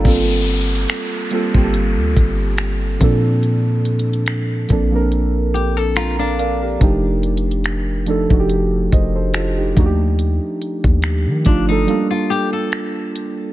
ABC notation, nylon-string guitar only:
X:1
M:4/4
L:1/16
Q:"Swing 16ths" 1/4=71
K:Gm
V:1 name="Nylon-string guitar"
z16 | z8 z2 G A F D3 | z16 | z6 D E2 F G A4- A |]